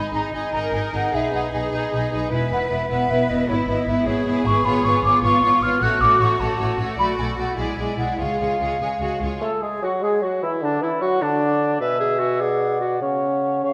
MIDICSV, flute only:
0, 0, Header, 1, 2, 480
1, 0, Start_track
1, 0, Tempo, 397088
1, 1364, Time_signature, 6, 3, 24, 8
1, 2317, Tempo, 389610
1, 9037, Tempo, 411523
1, 11917, Tempo, 394737
1, 14797, Tempo, 409836
1, 16581, End_track
2, 0, Start_track
2, 0, Title_t, "Flute"
2, 0, Program_c, 0, 73
2, 174, Note_on_c, 0, 82, 54
2, 246, Note_off_c, 0, 82, 0
2, 402, Note_on_c, 0, 80, 56
2, 624, Note_off_c, 0, 80, 0
2, 632, Note_on_c, 0, 82, 57
2, 704, Note_off_c, 0, 82, 0
2, 874, Note_on_c, 0, 80, 55
2, 947, Note_off_c, 0, 80, 0
2, 1145, Note_on_c, 0, 78, 58
2, 1381, Note_on_c, 0, 76, 56
2, 1399, Note_off_c, 0, 78, 0
2, 1612, Note_off_c, 0, 76, 0
2, 1624, Note_on_c, 0, 78, 52
2, 1697, Note_off_c, 0, 78, 0
2, 1871, Note_on_c, 0, 80, 54
2, 1944, Note_off_c, 0, 80, 0
2, 2105, Note_on_c, 0, 75, 54
2, 2794, Note_off_c, 0, 75, 0
2, 2814, Note_on_c, 0, 80, 62
2, 3040, Note_off_c, 0, 80, 0
2, 3065, Note_on_c, 0, 78, 57
2, 3139, Note_off_c, 0, 78, 0
2, 3292, Note_on_c, 0, 76, 58
2, 3522, Note_off_c, 0, 76, 0
2, 3532, Note_on_c, 0, 78, 61
2, 3765, Note_on_c, 0, 76, 66
2, 3783, Note_off_c, 0, 78, 0
2, 4006, Note_on_c, 0, 75, 61
2, 4025, Note_off_c, 0, 76, 0
2, 4236, Note_off_c, 0, 75, 0
2, 4243, Note_on_c, 0, 73, 64
2, 4317, Note_off_c, 0, 73, 0
2, 4499, Note_on_c, 0, 75, 65
2, 4735, Note_on_c, 0, 76, 67
2, 4754, Note_off_c, 0, 75, 0
2, 4961, Note_on_c, 0, 73, 69
2, 4980, Note_off_c, 0, 76, 0
2, 5437, Note_on_c, 0, 85, 73
2, 5456, Note_off_c, 0, 73, 0
2, 5672, Note_on_c, 0, 83, 64
2, 5691, Note_off_c, 0, 85, 0
2, 5913, Note_on_c, 0, 85, 73
2, 5931, Note_off_c, 0, 83, 0
2, 6152, Note_off_c, 0, 85, 0
2, 6166, Note_on_c, 0, 86, 74
2, 6383, Note_off_c, 0, 86, 0
2, 6390, Note_on_c, 0, 85, 76
2, 6880, Note_on_c, 0, 89, 78
2, 6898, Note_off_c, 0, 85, 0
2, 7125, Note_on_c, 0, 90, 76
2, 7143, Note_off_c, 0, 89, 0
2, 7351, Note_on_c, 0, 86, 76
2, 7369, Note_off_c, 0, 90, 0
2, 7600, Note_on_c, 0, 85, 63
2, 7619, Note_off_c, 0, 86, 0
2, 7833, Note_on_c, 0, 81, 60
2, 7852, Note_off_c, 0, 85, 0
2, 8308, Note_off_c, 0, 81, 0
2, 8558, Note_on_c, 0, 83, 68
2, 8632, Note_off_c, 0, 83, 0
2, 8801, Note_on_c, 0, 80, 64
2, 8875, Note_off_c, 0, 80, 0
2, 9047, Note_on_c, 0, 78, 51
2, 9270, Note_off_c, 0, 78, 0
2, 9281, Note_on_c, 0, 80, 56
2, 9735, Note_off_c, 0, 80, 0
2, 9742, Note_on_c, 0, 78, 47
2, 9970, Note_off_c, 0, 78, 0
2, 9977, Note_on_c, 0, 77, 47
2, 11168, Note_off_c, 0, 77, 0
2, 11424, Note_on_c, 0, 69, 52
2, 11494, Note_off_c, 0, 69, 0
2, 11666, Note_on_c, 0, 68, 53
2, 11897, Note_on_c, 0, 66, 50
2, 11914, Note_off_c, 0, 68, 0
2, 12143, Note_off_c, 0, 66, 0
2, 12151, Note_on_c, 0, 68, 54
2, 12367, Note_off_c, 0, 68, 0
2, 12374, Note_on_c, 0, 66, 55
2, 12624, Note_off_c, 0, 66, 0
2, 12633, Note_on_c, 0, 64, 51
2, 12706, Note_off_c, 0, 64, 0
2, 12858, Note_on_c, 0, 62, 53
2, 13103, Note_off_c, 0, 62, 0
2, 13113, Note_on_c, 0, 64, 56
2, 13349, Note_off_c, 0, 64, 0
2, 13360, Note_on_c, 0, 66, 65
2, 13579, Note_on_c, 0, 62, 67
2, 13598, Note_off_c, 0, 66, 0
2, 14305, Note_off_c, 0, 62, 0
2, 14317, Note_on_c, 0, 80, 51
2, 15029, Note_on_c, 0, 78, 48
2, 15047, Note_off_c, 0, 80, 0
2, 15749, Note_off_c, 0, 78, 0
2, 15760, Note_on_c, 0, 78, 39
2, 16466, Note_off_c, 0, 78, 0
2, 16476, Note_on_c, 0, 77, 38
2, 16581, Note_off_c, 0, 77, 0
2, 16581, End_track
0, 0, End_of_file